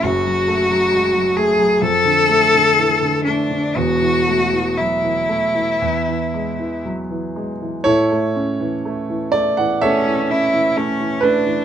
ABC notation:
X:1
M:4/4
L:1/16
Q:1/4=62
K:A
V:1 name="Cello"
F6 G2 A6 D2 | F4 E8 z4 | z8 C2 E2 C2 D2 |]
V:2 name="Grand piano"
z16 | z16 | [EAc]6 d f [Ace]6 B2 |]
V:3 name="Grand piano" clef=bass
[F,,,F,,] F, A, F, G, F, A, F, =F,, D, A, D, E, D, A, D, | [E,,,E,,] E, A, E, F, E, A, E, E,, E, G, E, F, E, G, E, | A,, A, C E, A, E, A, E, A, E, C E, A, E, A, E, |]